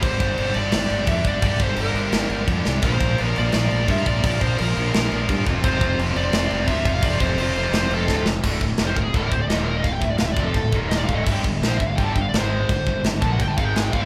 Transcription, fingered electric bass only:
\new Staff \with { instrumentName = "Fingered electric bass" } { \clef bass \time 4/4 \key g \dorian \tempo 4 = 171 g,,8 g,,8 g,,8 g,,8 g,,8 g,,8 f,8 g,,8 | g,,8 g,,8 g,,8 g,,8 g,,8 g,,8 f,8 c,8 | bes,,8 bes,,8 bes,,8 bes,,8 bes,,8 bes,,8 g,8 bes,,8 | bes,,8 bes,,8 bes,,8 bes,,8 bes,,8 bes,,8 g,8 f,,8 |
f,,8 f,,8 f,,8 f,,8 f,,8 f,,8 d,8 f,,8 | f,,8 f,,8 f,,8 f,,8 f,,8 f,,8 d,8 f,,8 | d,,8 d,,8 f,,8 d,,8 d,,8 d,,8 ees,,4 | d,,8 d,,8 d,,8 f,,8 d,,8 ees,,4 d,,8 |
g,,8 g,,8 bes,,8 g,,8 g,,8 g,,8 gis,,4 | g,,8 g,,8 g,,8 bes,,8 g,,8 gis,,4 g,,8 | }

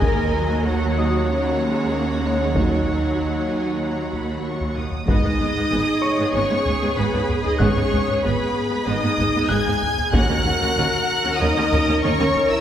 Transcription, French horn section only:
\new Staff \with { instrumentName = "French horn section" } { \time 4/4 \key gis \minor \tempo 4 = 95 ais'4 fis'4 cis'2 | dis'2. r4 | dis'2 cis'4 b8. dis'16 | cis'4 b4 dis'4 gis'4 |
fis'2 dis'4 cis'8. e'16 | }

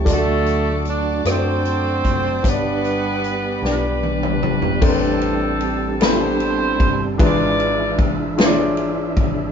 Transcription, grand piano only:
<<
  \new Staff \with { instrumentName = "Grand piano" } { \time 6/8 \key a \minor \tempo 4. = 50 <d' f' fis' a' d''>4 r8 <d' fis' a' d''>4 r8 | <d' g' b' des'' d''>4 r8 <d' g' b' d''>4 r8 | <c' d' g' a' bes' b'>4 r8 <b c' d' g' a' b''>4 r8 | <e d' f' gis' b'>4 r8 <d' e' f' gis' des'' d''>4 r8 | }
  \new Staff \with { instrumentName = "Grand piano" } { \clef bass \time 6/8 \key a \minor d4. r4. | g,4. r4. | a,4. r4. | gis,4. r4. | }
>>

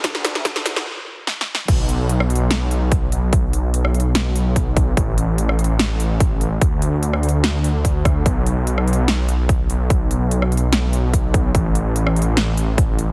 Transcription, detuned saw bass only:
\new Staff \with { instrumentName = "Detuned saw bass" } { \clef bass \time 4/4 \key b \minor \tempo 4 = 146 d,2 r2 | b,,2.~ b,,8 b,,8~ | b,,1 | a,,1 |
d,1 | b,,2.~ b,,8 b,,8~ | b,,1 | a,,1 | }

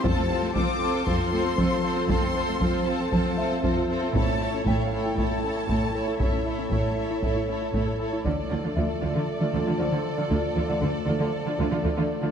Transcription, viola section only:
\new Staff \with { instrumentName = "Viola section" } { \time 4/4 \key d \minor \tempo 4 = 117 <c' f'>8 <c' f'>8 <c' f'>8 <c' f'>8 <c' f'>8 <c' f'>8 <c' f'>8 <c' f'>8 | <c' f'>8 <c' f'>8 <c' f'>8 <c' f'>8 <c' f'>8 <c' f'>8 <c' f'>8 <c' f'>8 | <a e'>8 <a e'>8 <a e'>8 <a e'>8 <a e'>8 <a e'>8 <a e'>8 <a e'>8 | <a e'>8 <a e'>8 <a e'>8 <a e'>8 <a e'>8 <a e'>8 <a e'>8 <a e'>8 |
<a f'>16 r16 <a f'>16 <a f'>16 <a f'>16 r16 <a f'>16 <a f'>16 r16 <a f'>16 <a f'>16 <a f'>16 <a f'>16 <a f'>16 r16 <a f'>16 | <a f'>16 r16 <a f'>16 <a f'>16 <a f'>16 r16 <a f'>16 <a f'>16 r16 <a f'>16 <a f'>16 <a f'>16 <a f'>16 <a f'>16 r16 <a f'>16 | }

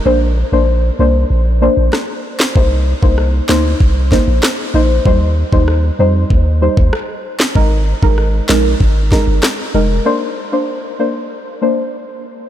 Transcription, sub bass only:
\new Staff \with { instrumentName = "Sub bass" } { \clef bass \time 4/4 \key bes \mixolydian \tempo 4 = 96 bes,,8. bes,,8. c,8 bes,,8. bes,,16 r4 | c,8. c,8. d,8 c,8. bes,,16 r8 bes,,8 | ees,8. ees,8. f,8 ees,8. ees,16 r4 | aes,,8. aes,,8. bes,,8 aes,,8. g,,16 r8 f,,8 |
r1 | }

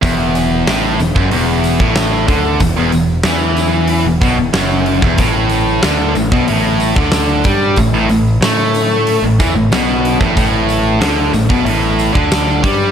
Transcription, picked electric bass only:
\new Staff \with { instrumentName = "Picked electric bass" } { \clef bass \time 4/4 \key a \lydian \tempo 4 = 93 e,,4 a,,8 e,,16 fis,,16 e,,8. a,,8. d,8 | e,,16 e,,16 e,,8 e,4~ e,16 e,,16 b,,16 e,,16 fis,,8. e,,16 | a,,4 d,8 a,,16 b,,16 a,,8. d,8. g,8 | a,,16 a,,16 a,,8 a,4~ a,16 a,,16 e,16 a,,16 b,,8. a,,16 |
a,,4 d,8 a,,16 b,,16 a,,8. d,8. g,8 | }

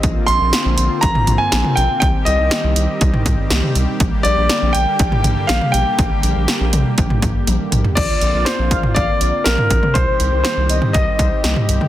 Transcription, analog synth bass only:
\new Staff \with { instrumentName = "Analog synth bass" } { \clef bass \time 4/4 \key c \minor \tempo 4 = 121 bes,,16 r16 bes,,16 bes,,16 r16 bes,,16 bes,,16 r16 bes,,16 r16 bes,,16 r16 bes,,16 r16 bes,,16 r16 | c,16 r16 c,16 c,16 r16 c,16 c,16 r16 c,16 r16 c,16 r16 c,16 r16 c,16 r16 | bes,,16 r16 bes,,16 bes,,16 r16 bes,,16 bes,,16 r16 bes,,16 r16 bes,,16 r16 bes,,16 r16 bes,,16 r16 | bes,,16 r16 bes,,16 bes,,16 r16 bes,,16 bes,,16 r16 bes,,16 r16 bes,,16 r16 bes,,16 r16 bes,,16 r16 |
bes,,16 r16 bes,,16 bes,,16 r16 bes,,16 bes,,16 r16 bes,,16 r16 bes,,16 r16 bes,,16 r16 bes,,16 r16 | c,16 r16 c,16 c,16 r16 c,16 c,16 r16 c,16 r16 c,16 r16 c,16 r16 c,16 r16 | }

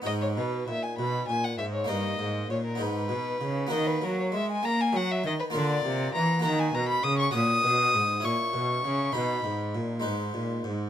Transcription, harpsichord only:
<<
  \new Staff \with { instrumentName = "Harpsichord" } { \time 6/8 \key gis \minor \tempo 4. = 66 <b dis' gis'>2. | <ais dis' ais'>4. <b dis' gis'>4. | <ais fis' ais'>2. | <ais eis' ais'>4. <ais fis' ais'>4. |
<fis' cis''>4. <e' cis''>4. | <dis' dis''>4. <gis dis' b'>4. | }
  \new Staff \with { instrumentName = "Harpsichord" } { \clef bass \time 6/8 \key gis \minor gis,8 b,8 ais,8 b,8 ais,8 gis,8 | g,8 gis,8 ais,8 gis,8 b,8 cis8 | dis8 fis8 gis8 ais8 fis8 dis8 | d8 bis,8 e8 dis8 b,8 cis8 |
ais,8 b,8 gis,8 ais,8 b,8 cis8 | b,8 gis,8 ais,8 gis,8 ais,8 gis,8 | }
>>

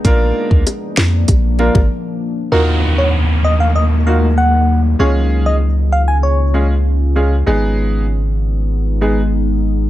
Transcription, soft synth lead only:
\new Staff \with { instrumentName = "Soft synth lead" } { \time 4/4 \key ees \minor \tempo 4 = 97 r1 | bes'16 r8 des''16 r8 ees''16 f''16 ees''16 r16 f''16 r16 ges''8. r16 | des''16 r8 ees''16 r8 f''16 aes''16 des''8. r4 r16 | r1 | }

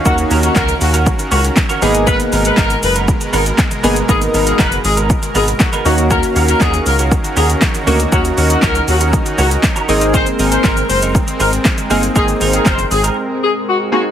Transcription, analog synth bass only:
\new Staff \with { instrumentName = "Analog synth bass" } { \clef bass \time 4/4 \key aes \dorian \tempo 4 = 119 ees,8 ees,8 des,8 ees,8. r16 des,8 r8 aes,,8~ | aes,,8 aes,,8 aes,,8 ges,,8. r16 aes,,8 r8 g,,8 | aes,,8 aes,,8 ges,,8 aes,,8. r16 aes,,8 r8 ees,8~ | ees,8 ees,8 ees,8 des,8. r16 ees,8 r8 d,8 |
ees,8 ees,8 des,8 ees,8. r16 des,8 r8 aes,,8~ | aes,,8 aes,,8 aes,,8 ges,,8. r16 aes,,8 r8 g,,8 | aes,,8 aes,,8 ges,,8 aes,,8 r2 | }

